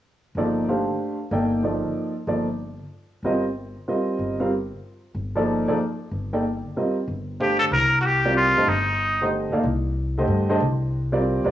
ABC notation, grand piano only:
X:1
M:3/4
L:1/8
Q:"Swing" 1/4=187
K:Cdor
V:1 name="Grand piano"
z2 [F,B,EAd]2 [A,DGcf]2- | [A,DGcf] z [B,EAdg]2 [F,B,EAd]2- | [F,B,EAd] z [F,B,EAd] z3 | z2 [G,CFBe] z3 |
[G,CFBe]3 [G,CFBf] z2 | z3 [F,B,EAd]2 [F,B,EAd] | z3 [B,EAdg] z2 | [G,CFBe] z3 [A,DGcf]2 |
z3 [G,CFBd]2 [A,DGce] | z3 [D,A,Gce]2 [B,EAdf] | z3 [D,A,Gce]2 [A,DGce] | z3 [G,CFBd]2 [G,CFBd] |]